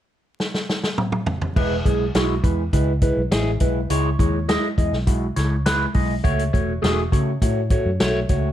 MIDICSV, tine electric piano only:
0, 0, Header, 1, 2, 480
1, 0, Start_track
1, 0, Key_signature, 4, "major"
1, 0, Tempo, 585366
1, 1282, Time_signature, 4, 2, 24, 8
1, 6990, End_track
2, 0, Start_track
2, 0, Title_t, "Tine electric piano"
2, 0, Program_c, 0, 4
2, 1280, Note_on_c, 0, 56, 93
2, 1282, Note_on_c, 0, 71, 105
2, 1283, Note_on_c, 0, 64, 87
2, 1434, Note_off_c, 0, 56, 0
2, 1435, Note_off_c, 0, 64, 0
2, 1435, Note_off_c, 0, 71, 0
2, 1519, Note_on_c, 0, 64, 66
2, 1521, Note_on_c, 0, 56, 76
2, 1522, Note_on_c, 0, 68, 82
2, 1673, Note_off_c, 0, 64, 0
2, 1674, Note_off_c, 0, 56, 0
2, 1675, Note_off_c, 0, 68, 0
2, 1763, Note_on_c, 0, 56, 97
2, 1766, Note_on_c, 0, 64, 90
2, 1766, Note_on_c, 0, 66, 109
2, 1915, Note_off_c, 0, 56, 0
2, 1916, Note_off_c, 0, 64, 0
2, 1916, Note_off_c, 0, 66, 0
2, 1997, Note_on_c, 0, 71, 78
2, 1998, Note_on_c, 0, 64, 65
2, 2000, Note_on_c, 0, 56, 70
2, 2152, Note_off_c, 0, 64, 0
2, 2152, Note_off_c, 0, 71, 0
2, 2153, Note_off_c, 0, 56, 0
2, 2238, Note_on_c, 0, 64, 70
2, 2239, Note_on_c, 0, 56, 75
2, 2242, Note_on_c, 0, 71, 82
2, 2393, Note_off_c, 0, 56, 0
2, 2393, Note_off_c, 0, 64, 0
2, 2394, Note_off_c, 0, 71, 0
2, 2478, Note_on_c, 0, 56, 73
2, 2478, Note_on_c, 0, 71, 82
2, 2480, Note_on_c, 0, 64, 66
2, 2632, Note_off_c, 0, 56, 0
2, 2632, Note_off_c, 0, 71, 0
2, 2633, Note_off_c, 0, 64, 0
2, 2717, Note_on_c, 0, 56, 100
2, 2718, Note_on_c, 0, 68, 111
2, 2720, Note_on_c, 0, 64, 91
2, 2872, Note_off_c, 0, 56, 0
2, 2872, Note_off_c, 0, 68, 0
2, 2873, Note_off_c, 0, 64, 0
2, 2956, Note_on_c, 0, 56, 76
2, 2958, Note_on_c, 0, 64, 71
2, 2958, Note_on_c, 0, 71, 80
2, 3111, Note_off_c, 0, 56, 0
2, 3112, Note_off_c, 0, 64, 0
2, 3112, Note_off_c, 0, 71, 0
2, 3200, Note_on_c, 0, 56, 101
2, 3200, Note_on_c, 0, 64, 83
2, 3202, Note_on_c, 0, 73, 108
2, 3353, Note_off_c, 0, 56, 0
2, 3353, Note_off_c, 0, 64, 0
2, 3354, Note_off_c, 0, 73, 0
2, 3436, Note_on_c, 0, 56, 80
2, 3437, Note_on_c, 0, 64, 67
2, 3441, Note_on_c, 0, 73, 87
2, 3591, Note_off_c, 0, 56, 0
2, 3592, Note_off_c, 0, 64, 0
2, 3594, Note_off_c, 0, 73, 0
2, 3678, Note_on_c, 0, 56, 95
2, 3679, Note_on_c, 0, 64, 91
2, 3680, Note_on_c, 0, 75, 110
2, 3832, Note_off_c, 0, 56, 0
2, 3833, Note_off_c, 0, 64, 0
2, 3833, Note_off_c, 0, 75, 0
2, 3916, Note_on_c, 0, 56, 73
2, 3920, Note_on_c, 0, 64, 67
2, 3920, Note_on_c, 0, 75, 76
2, 4071, Note_off_c, 0, 56, 0
2, 4073, Note_off_c, 0, 64, 0
2, 4073, Note_off_c, 0, 75, 0
2, 4155, Note_on_c, 0, 56, 78
2, 4157, Note_on_c, 0, 64, 72
2, 4157, Note_on_c, 0, 66, 85
2, 4311, Note_off_c, 0, 56, 0
2, 4312, Note_off_c, 0, 64, 0
2, 4312, Note_off_c, 0, 66, 0
2, 4397, Note_on_c, 0, 73, 82
2, 4398, Note_on_c, 0, 64, 72
2, 4400, Note_on_c, 0, 56, 76
2, 4552, Note_off_c, 0, 64, 0
2, 4552, Note_off_c, 0, 73, 0
2, 4553, Note_off_c, 0, 56, 0
2, 4640, Note_on_c, 0, 56, 101
2, 4640, Note_on_c, 0, 71, 111
2, 4642, Note_on_c, 0, 64, 98
2, 4793, Note_off_c, 0, 71, 0
2, 4794, Note_off_c, 0, 56, 0
2, 4794, Note_off_c, 0, 64, 0
2, 4875, Note_on_c, 0, 56, 72
2, 4878, Note_on_c, 0, 75, 87
2, 4879, Note_on_c, 0, 64, 69
2, 5031, Note_off_c, 0, 56, 0
2, 5032, Note_off_c, 0, 75, 0
2, 5033, Note_off_c, 0, 64, 0
2, 5114, Note_on_c, 0, 57, 101
2, 5114, Note_on_c, 0, 66, 85
2, 5116, Note_on_c, 0, 73, 113
2, 5270, Note_off_c, 0, 57, 0
2, 5271, Note_off_c, 0, 66, 0
2, 5272, Note_off_c, 0, 73, 0
2, 5356, Note_on_c, 0, 73, 89
2, 5357, Note_on_c, 0, 57, 72
2, 5358, Note_on_c, 0, 66, 65
2, 5512, Note_off_c, 0, 57, 0
2, 5512, Note_off_c, 0, 73, 0
2, 5513, Note_off_c, 0, 66, 0
2, 5593, Note_on_c, 0, 57, 97
2, 5595, Note_on_c, 0, 68, 102
2, 5596, Note_on_c, 0, 66, 88
2, 5750, Note_off_c, 0, 57, 0
2, 5752, Note_off_c, 0, 66, 0
2, 5752, Note_off_c, 0, 68, 0
2, 5837, Note_on_c, 0, 57, 77
2, 5838, Note_on_c, 0, 66, 63
2, 5839, Note_on_c, 0, 73, 79
2, 5992, Note_off_c, 0, 57, 0
2, 5993, Note_off_c, 0, 66, 0
2, 5994, Note_off_c, 0, 73, 0
2, 6086, Note_on_c, 0, 57, 72
2, 6088, Note_on_c, 0, 66, 69
2, 6088, Note_on_c, 0, 73, 84
2, 6237, Note_off_c, 0, 57, 0
2, 6238, Note_off_c, 0, 66, 0
2, 6238, Note_off_c, 0, 73, 0
2, 6321, Note_on_c, 0, 57, 71
2, 6321, Note_on_c, 0, 66, 71
2, 6324, Note_on_c, 0, 73, 85
2, 6475, Note_off_c, 0, 57, 0
2, 6475, Note_off_c, 0, 66, 0
2, 6476, Note_off_c, 0, 73, 0
2, 6560, Note_on_c, 0, 57, 104
2, 6560, Note_on_c, 0, 66, 95
2, 6562, Note_on_c, 0, 73, 117
2, 6715, Note_off_c, 0, 57, 0
2, 6715, Note_off_c, 0, 66, 0
2, 6716, Note_off_c, 0, 73, 0
2, 6801, Note_on_c, 0, 57, 73
2, 6804, Note_on_c, 0, 66, 74
2, 6804, Note_on_c, 0, 73, 86
2, 6955, Note_off_c, 0, 57, 0
2, 6956, Note_off_c, 0, 66, 0
2, 6957, Note_off_c, 0, 73, 0
2, 6990, End_track
0, 0, End_of_file